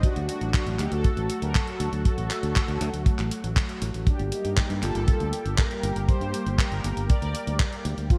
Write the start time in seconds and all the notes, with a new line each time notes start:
0.03 F#3 A3 D4 F#4, kick, closed hi-hat
0.16 D2, closed hi-hat
0.29 D4 F#4, closed hi-hat
0.41 A1, closed hi-hat
0.54 kick, clap, closed hi-hat
0.66 A1, closed hi-hat
0.79 D2 D#4 G4, clap, closed hi-hat
0.92 D2 F#4 A4, closed hi-hat
1.04 kick, closed hi-hat
1.17 A1, closed hi-hat
1.30 closed hi-hat
1.42 D2 G4 A#4, closed hi-hat
1.55 F#4 A4, kick, clap, closed hi-hat
1.67 closed hi-hat
1.80 D2, closed hi-hat
1.93 D2, closed hi-hat
2.05 F#4 A4, kick, closed hi-hat
2.18 A1, closed hi-hat
2.31 clap, closed hi-hat
2.43 D2, closed hi-hat
2.56 kick, clap, closed hi-hat
2.68 D2, closed hi-hat
2.81 D2, closed hi-hat
2.93 D2, closed hi-hat
3.06 kick, closed hi-hat
3.19 A1, clap, closed hi-hat
3.31 closed hi-hat
3.44 A1, closed hi-hat
3.56 kick, clap, closed hi-hat
3.69 closed hi-hat
3.82 A1, closed hi-hat
3.94 A1, closed hi-hat
4.07 G3 A#3 D4 G4, kick, closed hi-hat
4.19 G1, closed hi-hat
4.32 D#4 G4, closed hi-hat
4.45 G2, closed hi-hat
4.57 kick, clap, closed hi-hat
4.70 G2, closed hi-hat
4.82 G1 F4 A4, clap, closed hi-hat
4.95 G1, closed hi-hat
5.08 kick, closed hi-hat
5.20 D2, closed hi-hat
5.33 closed hi-hat
5.45 G1, closed hi-hat
5.58 G4 A#4, kick, clap, closed hi-hat
5.71 closed hi-hat
5.83 G1, closed hi-hat
5.96 G1, closed hi-hat
6.08 G4 C5, kick, closed hi-hat
6.21 G2, closed hi-hat
6.34 closed hi-hat
6.46 G1, closed hi-hat
6.58 G4 A#4, kick, clap, closed hi-hat
6.72 G1, closed hi-hat
6.84 G1, closed hi-hat
6.97 G1, closed hi-hat
7.09 A#4 D5, kick, closed hi-hat
7.22 D2, closed hi-hat
7.35 closed hi-hat
7.47 D2, closed hi-hat
7.60 kick, clap, closed hi-hat
7.73 closed hi-hat
7.85 D2, closed hi-hat
7.98 D2, closed hi-hat
8.10 F3 C4 F4 A4, kick, closed hi-hat